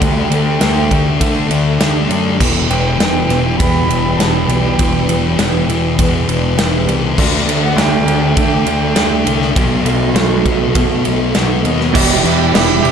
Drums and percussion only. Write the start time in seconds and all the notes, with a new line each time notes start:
0.02 kick, ride
0.32 ride
0.61 snare, ride
0.91 kick, ride
1.21 kick, ride
1.51 ride
1.80 snare, ride
2.11 ride
2.40 kick, crash
2.71 ride
3.00 snare, ride
3.30 snare, ride
3.60 kick, ride
3.90 ride
4.20 snare, ride
4.49 ride
4.79 kick, ride
5.09 ride
5.39 snare, ride
5.70 ride
5.99 kick, ride
6.29 ride
6.59 snare, ride
6.89 ride
7.18 kick, crash
7.49 ride
7.78 snare, ride
8.08 ride
8.37 kick, ride
8.66 ride
8.96 snare, ride
9.27 ride
9.42 snare
9.56 kick, ride
9.86 ride
10.16 snare, ride
10.46 kick, ride
10.75 kick, ride
11.05 ride
11.35 snare, ride
11.65 ride
11.80 snare
11.95 kick, crash
12.25 crash
12.55 snare, crash
12.85 crash